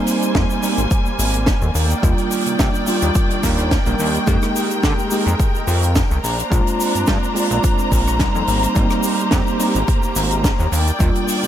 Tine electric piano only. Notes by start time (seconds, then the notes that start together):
Already playing: G3 A#3 C4 D#4
0.63 G3 A#3 C4 D#4
2.02 G3 A#3 D4 F4
2.86 G3 A#3 D4 F4
3.86 G3 A#3 D4 A#4
4.26 G#3 A#3 D#4 G4
5.11 G#3 A#3 D#4 G4
6.50 G#3 C4 D4 F4
7.34 G#3 C4 D4 F4
8.19 G3 A#3 C4 D#4
8.75 G3 A#3 C4 D#4
9.59 G3 A#3 C4 D#4
10.99 G3 A#3 D4 F4